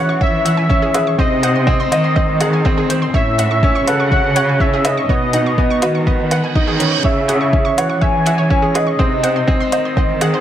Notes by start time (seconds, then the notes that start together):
Already playing: E3 C#4 G#4 C#5 F#5
0.09 C#6
0.21 C#4 E5, kick
0.45 E5 F#5, closed hi-hat
0.57 G#5
0.69 C#4 E5, kick
0.82 G#4
0.94 G#4 B4, closed hi-hat, low woodblock
1.07 C#6
1.18 C3 C4 C5 D#5, kick
1.43 C5 F#5, closed hi-hat
1.56 C6
1.67 C4 G#5, kick
1.80 C6
1.92 D#3 C5 D#5, closed hi-hat, low woodblock
2.04 C6
2.16 C4 D#5, kick
2.40 G#4 F#5, closed hi-hat, low woodblock
2.53 G#5
2.65 C4 D#5, kick
2.78 G#4
2.90 C5, closed hi-hat
3.02 C6
3.14 A2 C#4 C#5 E5, kick
3.38 E5 F#5, closed hi-hat
3.51 C#6
3.63 C#4 G#5, kick
3.75 C#6
3.86 C#3 A4 B4 F#5, closed hi-hat, low woodblock
4.00 C#6
4.12 C#4 E5, kick
4.36 C#5 F#5, closed hi-hat
4.49 G#5
4.60 C#4 E5, kick
4.74 G#4
4.85 B4 D#5 E5, closed hi-hat, low woodblock
4.97 C#6
5.09 B2 B3 C#5, kick
5.33 D#4 F#5, closed hi-hat
5.46 C#6
5.58 B3 G#5, kick
5.70 C#6
5.82 D#3 F#4 B4, closed hi-hat, low woodblock
5.95 C#6
6.06 B3 D#5, kick, reverse cymbal
6.31 B4 F#5, closed hi-hat, low woodblock
6.44 G#5
6.55 D#3 D#4 D#5, kick
6.67 G#4
6.80 C#4 B4, closed hi-hat
6.92 C#6
7.04 C#3 C#4 C#5 E5, kick
7.28 G#4 F#5, closed hi-hat
7.41 C#6
7.53 C#4 G#5, kick
7.65 C#6
7.77 E3 B4 C#5 F#5, closed hi-hat, low woodblock
7.90 C#6
8.01 C#4 E5 G#5, kick
8.26 E5 F#5, closed hi-hat
8.38 C#5
8.50 C#4 E5, kick
8.62 G#4
8.74 G#4 B4 D#5, closed hi-hat, low woodblock
8.87 C#6
8.99 C3 C4 C5, kick
9.23 C5 F#5, closed hi-hat
9.36 C6
9.48 C4 G#5, kick
9.60 C6
9.72 D#3 C5 D#5, closed hi-hat, low woodblock
9.85 C6
9.97 C4 D#5, kick
10.21 G#4 F#5, closed hi-hat, low woodblock
10.34 C5